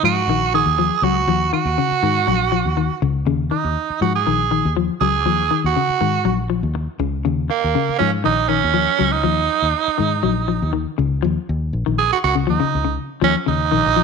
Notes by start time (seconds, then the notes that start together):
0.03 G#2 F3 F#4
0.28 A#1 D#3
0.54 D#3 G#4
0.66 D#2
0.78 F3
1.02 C#2 F#3 F#4
1.27 D#2 F3
1.53 D#3 F#4
1.65 D#2
1.78 C#3
1.91 muted fingered electric bass stroke
2.03 G#2 D#3
2.27 A#1 F#3
2.52 F3
2.65 D#2
2.77 D#3
3.02 C#2 C#3
3.26 D#2 C#3
3.51 D#3 D#4
3.64 D#2
3.90 muted fingered electric bass stroke
4.01 G#2 F3 F#4
4.15 G#4
4.27 A#1 D#3
4.51 D#3
4.65 D#2
4.76 F3
5.01 C#2 F#3 G#4
5.25 D#2 F3
5.51 D#3
5.64 D#2 F#4
5.76 C#3
5.89 muted fingered electric bass stroke
6.01 G#2 D#3
6.25 A#1 F#3
6.50 F3
6.63 D#2
6.75 muted clean electric guitar stroke
6.99 C#2 C#3
7.25 D#2 C#3
7.50 A#3, muted clean electric guitar stroke
7.64 D#2
7.75 C#3
7.89 muted fingered electric bass stroke
7.99 G#2 F3 C#4
8.24 A#1 D#3 D#4
8.48 D#3 C#4
8.64 D#2
8.74 F3
8.99 C#2 F#3
9.12 D#4
9.24 D#2 F3
9.62 D#2
9.88 muted fingered electric bass stroke
9.98 G#2 D#3
10.23 A#1 F#3
10.48 F3
10.62 D#2
10.73 D#3
10.98 C#2 C#3
11.22 D#2 F3
11.49 D#2
11.73 A#1
11.86 A#1 D#3
11.98 G#4
12.12 F#4, muted fingered electric bass stroke
12.24 C#2 F#4
12.35 C#3
12.47 D#2 F3 D#4
12.60 C#3, muted fingered electric bass stroke
12.75 C#2
12.84 C#3
13.21 D#2 F3 C#4
13.46 D#2 C#3 D#4
13.72 A#1 D#3
13.86 A#1
13.96 F3